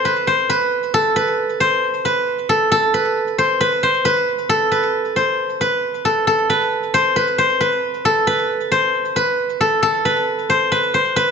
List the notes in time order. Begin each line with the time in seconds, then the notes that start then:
Already playing: A4 C5
0.05 B4
0.27 C5
0.50 B4
0.94 A4
1.16 B4
1.60 C5
2.05 B4
2.49 A4
2.72 A4
2.94 B4
3.38 C5
3.61 B4
3.83 C5
4.05 B4
4.49 A4
4.72 B4
5.16 C5
5.61 B4
6.05 A4
6.27 A4
6.50 B4
6.94 C5
7.16 B4
7.38 C5
7.61 B4
8.05 A4
8.27 B4
8.72 C5
9.16 B4
9.61 A4
9.83 A4
10.05 B4
10.50 C5
10.72 B4
10.94 C5
11.16 B4